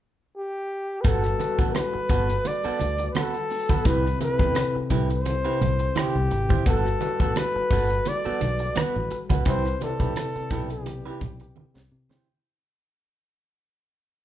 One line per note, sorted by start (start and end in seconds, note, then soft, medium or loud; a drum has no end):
0.37 1.02 G4 medium
1.01 1.28 G3 medium
1.01 1.24 B3 medium
1.01 1.29 F#4 medium
1.01 1.08 B4 medium
1.01 kick loud
1.01 closed hi-hat medium
1.05 1.32 G1 medium
1.05 1.23 F#4 medium
1.05 1.29 A4 medium
1.05 1.23 A4 medium
1.05 1.69 A4 medium
1.05 1.29 B4 medium
1.05 muted conga soft
1.24 muted clean electric guitar stroke soft
1.24 cross-stick soft
1.24 closed hi-hat soft
1.39 2.32 G3 medium
1.39 2.32 F#4 medium
1.39 2.33 A4 medium
1.39 2.33 B4 medium
1.39 muted clean electric guitar stroke soft
1.39 closed hi-hat medium
1.39 muted conga soft
1.58 1.72 A1 medium
1.58 1.72 B3 soft
1.58 1.72 F#4 soft
1.58 1.72 A4 soft
1.58 kick medium
1.58 closed hi-hat soft
1.70 1.78 A#4 medium
1.75 2.49 B4 medium
1.75 cross-stick medium
1.75 closed hi-hat medium
1.75 high conga medium
1.94 muted clean electric guitar stroke soft
1.94 muted fingered electric bass stroke soft
2.09 2.37 G1 medium
2.09 2.29 B3 medium
2.09 2.29 F#4 medium
2.09 2.27 A4 medium
2.09 kick medium
2.09 closed hi-hat medium
2.29 muted clean electric guitar stroke soft
2.29 closed hi-hat soft
2.45 3.10 D5 loud
2.45 muted clean electric guitar stroke soft
2.45 closed hi-hat medium
2.45 muted conga soft
2.64 2.80 B3 medium
2.64 2.80 F#4 medium
2.64 2.81 A4 medium
2.64 muted fingered electric bass stroke soft
2.64 closed hi-hat soft
2.79 3.08 D2 medium
2.79 muted clean electric guitar stroke soft
2.79 closed hi-hat medium
2.79 muted conga soft
2.98 muted clean electric guitar stroke soft
2.98 closed hi-hat soft
3.11 3.19 B4 medium
3.11 closed hi-hat medium
3.11 high conga medium
3.15 3.35 B3 medium
3.15 3.35 F#4 medium
3.15 3.88 A4 medium
3.15 3.35 B4 medium
3.15 cross-stick loud
3.34 closed hi-hat soft
3.50 muted clean electric guitar stroke soft
3.50 open hi-hat soft
3.69 3.83 B3 soft
3.69 3.83 F#4 medium
3.69 3.82 B4 medium
3.69 kick medium
3.69 closed hi-hat soft
3.69 high conga medium
3.85 4.13 C2 loud
3.85 4.09 C3 medium
3.85 4.09 C4 medium
3.85 4.09 E4 medium
3.85 4.05 E4 medium
3.85 4.05 G4 medium
3.85 4.10 B4 medium
3.85 4.21 B4 medium
3.85 4.04 B4 medium
3.85 kick loud
3.85 closed hi-hat medium
3.85 muted conga soft
4.05 muted clean electric guitar stroke soft
4.05 cross-stick soft
4.20 5.13 C3 medium
4.20 5.13 C4 medium
4.20 5.13 E4 medium
4.20 5.14 A4 medium
4.20 4.79 B4 loud
4.20 muted clean electric guitar stroke soft
4.20 closed hi-hat medium
4.20 muted conga soft
4.39 4.52 E2 medium
4.39 4.53 E4 soft
4.39 4.53 G4 soft
4.39 4.53 B4 medium
4.39 kick medium
4.39 closed hi-hat soft
4.55 cross-stick medium
4.55 closed hi-hat medium
4.55 high conga medium
4.75 muted clean electric guitar stroke soft
4.75 muted fingered electric bass stroke soft
4.90 5.45 C2 medium
4.90 5.10 E4 medium
4.90 5.09 G4 medium
4.90 5.09 B4 medium
4.90 kick medium
4.90 closed hi-hat medium
4.90 low conga medium
5.10 6.00 C5 medium
5.10 muted clean electric guitar stroke soft
5.10 closed hi-hat soft
5.26 muted clean electric guitar stroke soft
5.26 closed hi-hat medium
5.26 muted conga soft
5.45 5.60 E4 medium
5.45 5.60 G4 medium
5.45 5.61 B4 medium
5.61 5.88 C2 medium
5.61 muted clean electric guitar stroke soft
5.61 closed hi-hat medium
5.61 muted conga soft
5.61 low conga medium
5.79 muted clean electric guitar stroke soft
5.79 closed hi-hat soft
5.96 6.15 E4 medium
5.96 6.15 G4 medium
5.96 6.67 G4 medium
5.96 6.15 C5 medium
5.96 cross-stick loud
5.96 closed hi-hat medium
5.96 high conga medium
6.15 6.28 C2 medium
6.31 6.59 G#1 medium
6.31 muted clean electric guitar stroke soft
6.31 closed hi-hat medium
6.49 6.63 E4 soft
6.49 6.63 G4 medium
6.49 6.63 C5 medium
6.49 kick medium
6.49 closed hi-hat soft
6.49 high conga medium
6.65 6.94 G1 loud
6.65 6.89 G3 medium
6.65 6.85 B3 medium
6.65 6.90 F#4 medium
6.65 6.85 F#4 medium
6.65 6.90 A4 medium
6.65 6.84 A4 medium
6.65 7.40 A4 medium
6.65 6.90 B4 medium
6.65 kick loud
6.65 closed hi-hat medium
6.65 muted conga soft
6.85 muted clean electric guitar stroke soft
6.85 cross-stick soft
6.85 closed hi-hat soft
7.00 7.93 G3 medium
7.00 7.93 F#4 medium
7.00 7.93 A4 medium
7.00 7.94 B4 medium
7.00 muted clean electric guitar stroke soft
7.00 closed hi-hat medium
7.00 muted conga medium
7.20 7.33 A1 medium
7.20 7.33 B3 soft
7.20 7.33 F#4 soft
7.20 7.33 A4 soft
7.20 kick medium
7.20 closed hi-hat soft
7.36 8.10 B4 loud
7.36 cross-stick medium
7.36 closed hi-hat medium
7.36 high conga medium
7.56 muted fingered electric bass stroke soft
7.56 muted clean electric guitar stroke soft
7.70 7.98 G1 medium
7.70 7.90 B3 medium
7.70 7.90 F#4 medium
7.70 7.89 A4 medium
7.70 kick medium
7.70 open hi-hat soft
7.90 muted clean electric guitar stroke soft
7.90 closed hi-hat medium
8.06 8.79 D5 loud
8.06 muted clean electric guitar stroke soft
8.06 closed hi-hat medium
8.06 muted conga soft
8.24 8.40 B3 medium
8.24 8.41 F#4 medium
8.24 8.41 A4 medium
8.24 muted fingered electric bass stroke soft
8.24 closed hi-hat soft
8.41 8.69 B1 medium
8.41 muted clean electric guitar stroke soft
8.41 closed hi-hat medium
8.41 muted conga soft
8.59 muted clean electric guitar stroke soft
8.59 closed hi-hat soft
8.75 8.95 B3 medium
8.75 8.95 F#4 medium
8.75 8.96 B4 medium
8.75 9.20 B4 medium
8.75 muted fingered electric bass stroke soft
8.75 cross-stick loud
8.75 closed hi-hat medium
8.75 high conga medium
8.96 9.08 A1 medium
9.11 muted clean electric guitar stroke soft
9.11 closed hi-hat medium
9.29 9.43 C#2 medium
9.29 9.43 B3 soft
9.29 9.43 F#4 soft
9.29 9.43 B4 medium
9.29 kick medium
9.29 closed hi-hat soft
9.29 high conga medium
9.45 9.73 C2 loud
9.45 9.70 C3 medium
9.45 9.70 C4 medium
9.45 9.65 E4 medium
9.45 9.70 E4 medium
9.45 9.65 G4 medium
9.45 9.64 B4 medium
9.45 9.71 B4 medium
9.45 9.85 C5 medium
9.45 kick loud
9.45 closed hi-hat medium
9.45 muted conga soft
9.65 muted clean electric guitar stroke soft
9.65 cross-stick soft
9.65 closed hi-hat soft
9.81 10.73 C3 medium
9.81 10.74 C4 medium
9.81 10.74 E4 medium
9.81 10.71 A4 medium
9.81 10.74 D5 medium
9.81 muted clean electric guitar stroke soft
9.81 closed hi-hat medium
9.81 muted conga medium
10.00 10.13 B1 medium
10.00 10.13 E4 soft
10.00 10.13 G4 soft
10.00 10.13 B4 soft
10.00 kick medium
10.00 closed hi-hat soft
10.16 cross-stick medium
10.16 closed hi-hat medium
10.16 high conga medium
10.36 muted clean electric guitar stroke soft
10.36 muted fingered electric bass stroke soft
10.36 closed hi-hat soft
10.50 11.06 B1 medium
10.50 10.70 E4 medium
10.50 10.70 G4 medium
10.50 10.70 B4 medium
10.50 kick medium
10.50 closed hi-hat medium
10.50 low conga soft
10.70 11.88 G4 medium
10.70 muted clean electric guitar stroke soft
10.70 closed hi-hat medium
10.86 muted clean electric guitar stroke soft
10.86 closed hi-hat medium
10.86 muted conga soft
11.06 11.21 E4 medium
11.06 11.21 G4 medium
11.06 11.22 B4 medium
11.21 11.49 B1 medium
11.21 muted clean electric guitar stroke soft
11.21 kick medium
11.21 closed hi-hat medium
11.21 muted conga medium
11.21 low conga medium
11.40 muted clean electric guitar stroke soft
11.40 closed hi-hat soft
11.56 muted clean electric guitar stroke soft
11.56 muted fingered electric bass stroke soft
11.56 high conga medium
11.75 11.88 C2 medium
11.75 muted clean electric guitar stroke soft
11.75 snare medium
11.92 12.18 C3 medium
12.09 12.27 E4 medium
12.09 12.27 G4 medium
12.09 12.26 C5 medium
12.09 snare medium
12.09 high conga medium